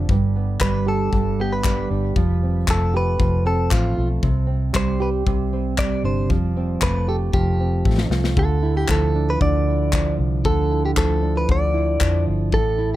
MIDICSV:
0, 0, Header, 1, 5, 480
1, 0, Start_track
1, 0, Tempo, 518135
1, 84, Time_signature, 4, 2, 24, 8
1, 12007, End_track
2, 0, Start_track
2, 0, Title_t, "Clean electric guitar"
2, 0, Program_c, 0, 27
2, 569, Note_on_c, 0, 71, 87
2, 789, Note_off_c, 0, 71, 0
2, 819, Note_on_c, 0, 69, 84
2, 1305, Note_off_c, 0, 69, 0
2, 1309, Note_on_c, 0, 67, 81
2, 1413, Note_on_c, 0, 71, 75
2, 1419, Note_off_c, 0, 67, 0
2, 1743, Note_off_c, 0, 71, 0
2, 2507, Note_on_c, 0, 69, 88
2, 2741, Note_off_c, 0, 69, 0
2, 2748, Note_on_c, 0, 71, 96
2, 3208, Note_off_c, 0, 71, 0
2, 3212, Note_on_c, 0, 69, 81
2, 3430, Note_off_c, 0, 69, 0
2, 3444, Note_on_c, 0, 65, 71
2, 3777, Note_off_c, 0, 65, 0
2, 4412, Note_on_c, 0, 72, 94
2, 4645, Note_off_c, 0, 72, 0
2, 4649, Note_on_c, 0, 71, 70
2, 4712, Note_off_c, 0, 71, 0
2, 5362, Note_on_c, 0, 74, 94
2, 5604, Note_off_c, 0, 74, 0
2, 5607, Note_on_c, 0, 72, 70
2, 5827, Note_off_c, 0, 72, 0
2, 6327, Note_on_c, 0, 71, 101
2, 6546, Note_off_c, 0, 71, 0
2, 6566, Note_on_c, 0, 69, 82
2, 6630, Note_off_c, 0, 69, 0
2, 6799, Note_on_c, 0, 67, 72
2, 7482, Note_off_c, 0, 67, 0
2, 7774, Note_on_c, 0, 69, 75
2, 8102, Note_off_c, 0, 69, 0
2, 8125, Note_on_c, 0, 67, 71
2, 8234, Note_off_c, 0, 67, 0
2, 8254, Note_on_c, 0, 69, 81
2, 8616, Note_on_c, 0, 71, 86
2, 8617, Note_off_c, 0, 69, 0
2, 8723, Note_off_c, 0, 71, 0
2, 8726, Note_on_c, 0, 74, 93
2, 9406, Note_off_c, 0, 74, 0
2, 9686, Note_on_c, 0, 69, 77
2, 10053, Note_off_c, 0, 69, 0
2, 10056, Note_on_c, 0, 67, 65
2, 10103, Note_off_c, 0, 67, 0
2, 10170, Note_on_c, 0, 69, 87
2, 10536, Note_off_c, 0, 69, 0
2, 10536, Note_on_c, 0, 71, 73
2, 10652, Note_off_c, 0, 71, 0
2, 10668, Note_on_c, 0, 74, 98
2, 11339, Note_off_c, 0, 74, 0
2, 11616, Note_on_c, 0, 69, 91
2, 11946, Note_off_c, 0, 69, 0
2, 12007, End_track
3, 0, Start_track
3, 0, Title_t, "Nylon-string guitar"
3, 0, Program_c, 1, 24
3, 0, Note_on_c, 1, 50, 62
3, 0, Note_on_c, 1, 53, 60
3, 0, Note_on_c, 1, 60, 49
3, 0, Note_on_c, 1, 62, 51
3, 0, Note_on_c, 1, 69, 65
3, 94, Note_on_c, 1, 43, 74
3, 134, Note_off_c, 1, 53, 0
3, 135, Note_off_c, 1, 69, 0
3, 138, Note_off_c, 1, 60, 0
3, 332, Note_on_c, 1, 59, 52
3, 570, Note_on_c, 1, 55, 63
3, 801, Note_on_c, 1, 67, 62
3, 1035, Note_off_c, 1, 43, 0
3, 1046, Note_on_c, 1, 43, 60
3, 1282, Note_off_c, 1, 59, 0
3, 1293, Note_on_c, 1, 59, 49
3, 1526, Note_off_c, 1, 55, 0
3, 1530, Note_on_c, 1, 55, 61
3, 1769, Note_off_c, 1, 62, 0
3, 1772, Note_on_c, 1, 62, 52
3, 2006, Note_off_c, 1, 50, 0
3, 2010, Note_on_c, 1, 53, 71
3, 2052, Note_off_c, 1, 43, 0
3, 2055, Note_off_c, 1, 59, 0
3, 2055, Note_off_c, 1, 62, 0
3, 2252, Note_on_c, 1, 60, 47
3, 2498, Note_off_c, 1, 55, 0
3, 2502, Note_on_c, 1, 57, 61
3, 2530, Note_off_c, 1, 67, 0
3, 2722, Note_on_c, 1, 67, 70
3, 2941, Note_off_c, 1, 53, 0
3, 2952, Note_on_c, 1, 53, 68
3, 3195, Note_off_c, 1, 60, 0
3, 3198, Note_on_c, 1, 60, 50
3, 3427, Note_off_c, 1, 57, 0
3, 3438, Note_on_c, 1, 57, 57
3, 3676, Note_on_c, 1, 65, 56
3, 3916, Note_on_c, 1, 48, 75
3, 3964, Note_off_c, 1, 53, 0
3, 3966, Note_off_c, 1, 65, 0
3, 3967, Note_off_c, 1, 57, 0
3, 4137, Note_off_c, 1, 60, 0
3, 4141, Note_on_c, 1, 60, 49
3, 4384, Note_on_c, 1, 55, 69
3, 4629, Note_off_c, 1, 67, 0
3, 4633, Note_on_c, 1, 67, 63
3, 4871, Note_off_c, 1, 48, 0
3, 4882, Note_on_c, 1, 48, 73
3, 5119, Note_off_c, 1, 60, 0
3, 5122, Note_on_c, 1, 60, 55
3, 5351, Note_off_c, 1, 55, 0
3, 5354, Note_on_c, 1, 55, 68
3, 5597, Note_on_c, 1, 62, 48
3, 5832, Note_on_c, 1, 53, 76
3, 5886, Note_off_c, 1, 62, 0
3, 5888, Note_off_c, 1, 48, 0
3, 6082, Note_off_c, 1, 60, 0
3, 6086, Note_on_c, 1, 60, 53
3, 6316, Note_off_c, 1, 55, 0
3, 6319, Note_on_c, 1, 57, 69
3, 6347, Note_off_c, 1, 67, 0
3, 6561, Note_on_c, 1, 67, 64
3, 6789, Note_off_c, 1, 53, 0
3, 6793, Note_on_c, 1, 53, 76
3, 7031, Note_off_c, 1, 60, 0
3, 7043, Note_on_c, 1, 60, 54
3, 7275, Note_off_c, 1, 57, 0
3, 7278, Note_on_c, 1, 57, 55
3, 7518, Note_on_c, 1, 65, 56
3, 7743, Note_off_c, 1, 53, 0
3, 7747, Note_on_c, 1, 50, 79
3, 7754, Note_off_c, 1, 67, 0
3, 7758, Note_on_c, 1, 69, 63
3, 7809, Note_off_c, 1, 60, 0
3, 7989, Note_off_c, 1, 65, 0
3, 7992, Note_on_c, 1, 64, 50
3, 8222, Note_off_c, 1, 57, 0
3, 8226, Note_on_c, 1, 53, 64
3, 8479, Note_on_c, 1, 62, 63
3, 8699, Note_off_c, 1, 50, 0
3, 8710, Note_on_c, 1, 50, 77
3, 8963, Note_off_c, 1, 64, 0
3, 8966, Note_on_c, 1, 64, 55
3, 9193, Note_off_c, 1, 53, 0
3, 9208, Note_on_c, 1, 53, 56
3, 9676, Note_off_c, 1, 50, 0
3, 9689, Note_on_c, 1, 50, 78
3, 9692, Note_off_c, 1, 69, 0
3, 9696, Note_on_c, 1, 69, 65
3, 9919, Note_off_c, 1, 64, 0
3, 9923, Note_on_c, 1, 64, 55
3, 10153, Note_off_c, 1, 53, 0
3, 10164, Note_on_c, 1, 53, 61
3, 10390, Note_off_c, 1, 62, 0
3, 10401, Note_on_c, 1, 62, 67
3, 10633, Note_off_c, 1, 50, 0
3, 10644, Note_on_c, 1, 50, 67
3, 10872, Note_off_c, 1, 64, 0
3, 10876, Note_on_c, 1, 64, 64
3, 11106, Note_off_c, 1, 53, 0
3, 11117, Note_on_c, 1, 53, 64
3, 11608, Note_on_c, 1, 45, 88
3, 11611, Note_off_c, 1, 69, 0
3, 11615, Note_on_c, 1, 69, 69
3, 11649, Note_off_c, 1, 53, 0
3, 11651, Note_off_c, 1, 62, 0
3, 11653, Note_off_c, 1, 50, 0
3, 11839, Note_off_c, 1, 64, 0
3, 11842, Note_on_c, 1, 64, 54
3, 12007, Note_off_c, 1, 45, 0
3, 12007, Note_off_c, 1, 64, 0
3, 12007, Note_off_c, 1, 69, 0
3, 12007, End_track
4, 0, Start_track
4, 0, Title_t, "Fingered electric bass"
4, 0, Program_c, 2, 33
4, 86, Note_on_c, 2, 31, 71
4, 527, Note_off_c, 2, 31, 0
4, 568, Note_on_c, 2, 31, 82
4, 1008, Note_off_c, 2, 31, 0
4, 1042, Note_on_c, 2, 31, 88
4, 1726, Note_off_c, 2, 31, 0
4, 1765, Note_on_c, 2, 31, 66
4, 1985, Note_off_c, 2, 31, 0
4, 2002, Note_on_c, 2, 29, 83
4, 2445, Note_off_c, 2, 29, 0
4, 2484, Note_on_c, 2, 29, 85
4, 2925, Note_off_c, 2, 29, 0
4, 2962, Note_on_c, 2, 29, 91
4, 3405, Note_off_c, 2, 29, 0
4, 3443, Note_on_c, 2, 33, 90
4, 3663, Note_off_c, 2, 33, 0
4, 3688, Note_on_c, 2, 35, 76
4, 3905, Note_off_c, 2, 35, 0
4, 3917, Note_on_c, 2, 36, 87
4, 4361, Note_off_c, 2, 36, 0
4, 4398, Note_on_c, 2, 36, 86
4, 4842, Note_off_c, 2, 36, 0
4, 4879, Note_on_c, 2, 36, 92
4, 5563, Note_off_c, 2, 36, 0
4, 5592, Note_on_c, 2, 31, 81
4, 5834, Note_off_c, 2, 31, 0
4, 5834, Note_on_c, 2, 29, 90
4, 6279, Note_off_c, 2, 29, 0
4, 6314, Note_on_c, 2, 29, 80
4, 6759, Note_off_c, 2, 29, 0
4, 6797, Note_on_c, 2, 29, 90
4, 7241, Note_off_c, 2, 29, 0
4, 7277, Note_on_c, 2, 33, 83
4, 7499, Note_off_c, 2, 33, 0
4, 7504, Note_on_c, 2, 36, 84
4, 7732, Note_off_c, 2, 36, 0
4, 7754, Note_on_c, 2, 38, 86
4, 8200, Note_off_c, 2, 38, 0
4, 8230, Note_on_c, 2, 38, 83
4, 8678, Note_off_c, 2, 38, 0
4, 8718, Note_on_c, 2, 38, 87
4, 9403, Note_off_c, 2, 38, 0
4, 9436, Note_on_c, 2, 36, 82
4, 9659, Note_off_c, 2, 36, 0
4, 9680, Note_on_c, 2, 38, 73
4, 10124, Note_off_c, 2, 38, 0
4, 10167, Note_on_c, 2, 38, 85
4, 10608, Note_off_c, 2, 38, 0
4, 10647, Note_on_c, 2, 38, 90
4, 11088, Note_off_c, 2, 38, 0
4, 11130, Note_on_c, 2, 41, 74
4, 11348, Note_off_c, 2, 41, 0
4, 11372, Note_on_c, 2, 31, 84
4, 11589, Note_off_c, 2, 31, 0
4, 11604, Note_on_c, 2, 33, 93
4, 12007, Note_off_c, 2, 33, 0
4, 12007, End_track
5, 0, Start_track
5, 0, Title_t, "Drums"
5, 83, Note_on_c, 9, 36, 114
5, 176, Note_off_c, 9, 36, 0
5, 559, Note_on_c, 9, 39, 100
5, 562, Note_on_c, 9, 36, 92
5, 651, Note_off_c, 9, 39, 0
5, 655, Note_off_c, 9, 36, 0
5, 1043, Note_on_c, 9, 36, 92
5, 1136, Note_off_c, 9, 36, 0
5, 1521, Note_on_c, 9, 39, 102
5, 1524, Note_on_c, 9, 36, 99
5, 1614, Note_off_c, 9, 39, 0
5, 1616, Note_off_c, 9, 36, 0
5, 2001, Note_on_c, 9, 36, 106
5, 2094, Note_off_c, 9, 36, 0
5, 2481, Note_on_c, 9, 36, 97
5, 2481, Note_on_c, 9, 39, 103
5, 2574, Note_off_c, 9, 36, 0
5, 2574, Note_off_c, 9, 39, 0
5, 2961, Note_on_c, 9, 36, 106
5, 3054, Note_off_c, 9, 36, 0
5, 3438, Note_on_c, 9, 39, 103
5, 3440, Note_on_c, 9, 36, 97
5, 3531, Note_off_c, 9, 39, 0
5, 3533, Note_off_c, 9, 36, 0
5, 3917, Note_on_c, 9, 36, 100
5, 4010, Note_off_c, 9, 36, 0
5, 4396, Note_on_c, 9, 39, 91
5, 4398, Note_on_c, 9, 36, 104
5, 4489, Note_off_c, 9, 39, 0
5, 4491, Note_off_c, 9, 36, 0
5, 4878, Note_on_c, 9, 36, 100
5, 4971, Note_off_c, 9, 36, 0
5, 5354, Note_on_c, 9, 39, 104
5, 5358, Note_on_c, 9, 36, 97
5, 5447, Note_off_c, 9, 39, 0
5, 5451, Note_off_c, 9, 36, 0
5, 5836, Note_on_c, 9, 36, 105
5, 5929, Note_off_c, 9, 36, 0
5, 6313, Note_on_c, 9, 39, 103
5, 6315, Note_on_c, 9, 36, 96
5, 6406, Note_off_c, 9, 39, 0
5, 6408, Note_off_c, 9, 36, 0
5, 6795, Note_on_c, 9, 36, 113
5, 6888, Note_off_c, 9, 36, 0
5, 7276, Note_on_c, 9, 36, 100
5, 7368, Note_off_c, 9, 36, 0
5, 7392, Note_on_c, 9, 38, 68
5, 7484, Note_off_c, 9, 38, 0
5, 7515, Note_on_c, 9, 38, 76
5, 7608, Note_off_c, 9, 38, 0
5, 7634, Note_on_c, 9, 38, 75
5, 7726, Note_off_c, 9, 38, 0
5, 7753, Note_on_c, 9, 36, 112
5, 7845, Note_off_c, 9, 36, 0
5, 8228, Note_on_c, 9, 39, 107
5, 8233, Note_on_c, 9, 36, 101
5, 8320, Note_off_c, 9, 39, 0
5, 8326, Note_off_c, 9, 36, 0
5, 8716, Note_on_c, 9, 36, 98
5, 8809, Note_off_c, 9, 36, 0
5, 9196, Note_on_c, 9, 39, 94
5, 9199, Note_on_c, 9, 36, 106
5, 9289, Note_off_c, 9, 39, 0
5, 9292, Note_off_c, 9, 36, 0
5, 9680, Note_on_c, 9, 36, 107
5, 9773, Note_off_c, 9, 36, 0
5, 10161, Note_on_c, 9, 39, 106
5, 10162, Note_on_c, 9, 36, 98
5, 10254, Note_off_c, 9, 36, 0
5, 10254, Note_off_c, 9, 39, 0
5, 10643, Note_on_c, 9, 36, 101
5, 10736, Note_off_c, 9, 36, 0
5, 11122, Note_on_c, 9, 39, 102
5, 11125, Note_on_c, 9, 36, 99
5, 11215, Note_off_c, 9, 39, 0
5, 11217, Note_off_c, 9, 36, 0
5, 11603, Note_on_c, 9, 36, 100
5, 11695, Note_off_c, 9, 36, 0
5, 12007, End_track
0, 0, End_of_file